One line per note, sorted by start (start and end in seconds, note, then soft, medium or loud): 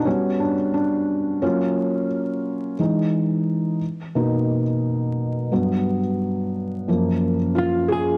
0.05 0.53 G3 soft
0.05 0.53 B3 soft
0.05 0.40 C#4 medium
0.05 0.53 F#4 medium
0.40 0.72 D4 medium
0.74 1.44 D4 medium
1.42 2.75 F#3 medium
1.42 2.75 A#3 soft
1.42 2.06 C#4 medium
1.42 2.75 F4 medium
2.79 3.77 E3 soft
2.79 3.77 G#3 soft
2.79 3.78 D#4 medium
4.15 4.62 B2 medium
4.15 4.62 A#3 soft
4.15 4.63 D#4 medium
5.51 5.98 G2 soft
5.51 5.99 F#3 soft
5.51 5.99 B3 medium
6.88 7.35 F#2 medium
6.88 7.35 F3 soft
6.88 7.35 A#3 medium
7.55 7.90 F4 medium
7.55 7.89 F4 medium
7.88 8.17 G#4 medium